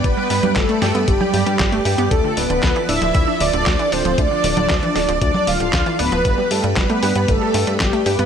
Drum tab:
HH |x-oxxxoxx-oxxxox|x-oxxxoxx-oxxxox|x-oxxxoxx-oxxxox|x-oxxxoxx-oxxxox|
CP |----x-------x---|----x-------x---|----x-------x---|----x-------x---|
SD |----o-o-----o---|----o-------o---|----o-o-----o---|----o-------o---|
CG |---o-----o------|----------------|---o-----o------|----------------|
BD |o---o---o---o---|o---o---o---o---|o---o---o---o---|o---o---o---o---|